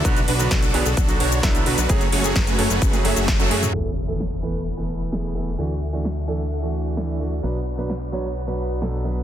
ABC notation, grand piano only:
X:1
M:4/4
L:1/16
Q:1/4=130
K:Emix
V:1 name="Grand piano"
[D,F,B,F] z2 [D,F,B,F] z2 [D,F,B,G] z2 [D,F,B,F]3 [D,F,B,E]2 [D,F,B,F] z | [F,A,CG] z2 [F,A,CG] z2 [F,A,CA] z2 [F,A,CG] [F,A,CG] z2 [F,A,CA] [F,A,CG]2 | [E,A,B,A] z2 [E,A,B,A] z2 [E,A,B,B] z2 [E,A,B,A]3 [E,A,B,G]2 [E,A,B,A] z | [E,A,DF] z2 [E,A,DF] z2 [E,A,DA] z2 [E,A,DF]3 [E,A,DE]2 [E,A,DF] z |
[B,,F,B,DB] z2 [B,,F,B,DB] z2 [B,,F,B,Dc] z2 [B,,F,B,DB]3 [B,,F,B,DA]2 [F,B,DB] z |]